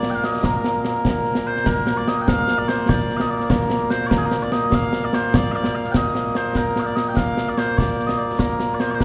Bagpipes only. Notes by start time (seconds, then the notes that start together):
Already playing: A#2 A#3 D5
0.10 G5
0.15 F5
0.24 D#5
0.45 A#4
1.47 C5
1.67 A#4
1.97 D5
2.08 D#5
2.21 G5
2.29 F5
2.58 D5
2.68 C5
2.89 D5
3.17 D#5 F5
3.31 D5
3.50 A#4
3.90 C5
4.07 A#4 D5
4.17 G#4
4.25 A#4
4.42 D5
4.53 D#5
4.74 F5
5.04 D5
5.14 C5
5.35 D5
5.52 D5 F5
5.75 F5
5.92 G5
5.96 D#5
6.36 C5
6.57 A#4
6.80 D#5 F5
6.86 D5
6.96 D#5
7.08 G5
7.16 F5
7.49 D5
7.58 C5
7.78 D5
8.07 D#5
8.18 D5
8.39 A#4
8.74 D5
8.80 C5
8.91 C5 D5
9.01 A#4